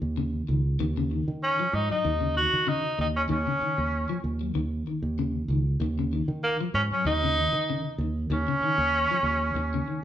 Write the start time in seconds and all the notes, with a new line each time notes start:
0.02 D#2
0.17 C#3
0.48 C#2 D#3
0.79 D#2 D#3
0.97 C#3
1.11 D#3
1.28 D#3
1.43 C#4
1.59 F3
1.73 G#2 D#4
1.90 F#3 D#4, muted fingered electric bass stroke
2.05 D#2 D#3
2.21 C#3
2.36 D#3 F#4
2.53 D#3
2.67 C#3 D#4
2.98 D#2 D#3 D#4
3.16 C#4
3.29 D#2 D#3 C#4
3.47 C#3
3.61 D#3, muted fingered electric bass stroke
3.78 D#2
4.09 F3
4.24 D#2
4.41 F#3
4.55 D#2 D#3
4.87 D#3
5.03 D#2
5.19 C#3
5.48 C#2 D#3
5.80 D#2 D#3
5.99 C#3
6.13 D#3
6.28 D#3
6.43 A#3
6.61 F3
6.74 G#2 C#4
6.90 F#3 C#4, muted fingered electric bass stroke
7.05 D#2 D#3 D#4
7.23 C#3
7.38 D#3
7.53 D#3
7.70 C#3
7.98 D#2 D#3
8.30 D#2 D#3 C#4
8.48 C#3
8.61 D#3, muted fingered electric bass stroke
8.78 D#2
9.11 F3
9.23 D#2
9.54 D#2, muted clean electric guitar stroke
9.74 C#3
9.88 D#3